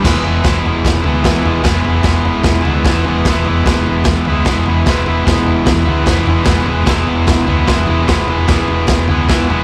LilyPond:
<<
  \new Staff \with { instrumentName = "Overdriven electric guitar" } { \time 4/4 \key e \mixolydian \tempo 4 = 149 <e gis b e'>8 <gis b e'>8 <e gis b e'>4. <gis b e'>8 <e gis b e'>8 <gis b e'>8 | <e gis b e'>8 <gis b e'>8 <e gis b e'>4. <gis b e'>8 <e gis b e'>8 <gis b e'>8 | <e gis b e'>8 <gis b e'>8 <e gis b e'>4. <gis b e'>8 <e gis b e'>8 <gis b e'>8 | <e gis b e'>8 <gis b e'>8 <e gis b e'>4. <gis b e'>8 <e gis b e'>8 <gis b e'>8 |
<e gis b e'>8 <gis b e'>8 <e gis b e'>4. <gis b e'>8 <e gis b e'>8 <gis b e'>8 | <e gis b e'>8 <gis b e'>8 <e gis b e'>4. <gis b e'>8 <e gis b e'>8 <gis b e'>8 | }
  \new Staff \with { instrumentName = "Fingered electric bass" } { \clef bass \time 4/4 \key e \mixolydian e,,8 e,,8 e,,8 e,,8 e,,8 d,8 e,,8 e,,8 | e,,8 e,,8 e,,8 e,,8 e,,8 d,8 e,,8 e,,8 | e,,8 e,,8 e,,8 e,,8 e,,8 d,8 e,,8 e,,8 | e,,8 e,,8 e,,8 e,,8 e,,8 d,8 e,,8 e,,8 |
e,,8 e,,8 e,,8 e,,8 e,,8 d,8 e,,8 e,,8 | e,,8 e,,8 e,,8 e,,8 e,,8 d,8 r8 e,,8 | }
  \new DrumStaff \with { instrumentName = "Drums" } \drummode { \time 4/4 <cymc bd sn tomfh>8 tomfh8 <bd sn tomfh>8 tomfh8 <bd sn tomfh>8 tomfh8 <bd sn tomfh>8 tomfh8 | <bd sn tomfh>8 tomfh8 <bd sn tomfh>8 tomfh8 <bd sn tomfh>8 tomfh8 <bd sn tomfh>8 tomfh8 | <bd sn tomfh>8 tomfh8 <bd sn tomfh>8 tomfh8 <bd sn tomfh>8 tomfh8 <bd sn tomfh>8 tomfh8 | <bd sn tomfh>8 tomfh8 <bd sn tomfh>8 tomfh8 <bd sn tomfh>8 tomfh8 <bd sn tomfh>8 tomfh8 |
<bd sn tomfh>8 tomfh8 <bd sn tomfh>8 tomfh8 <bd sn tomfh>8 tomfh8 <bd sn tomfh>8 tomfh8 | <bd sn tomfh>8 tomfh8 <bd sn tomfh>8 tomfh8 <bd sn tomfh>8 tomfh8 <bd sn tomfh>8 tomfh8 | }
>>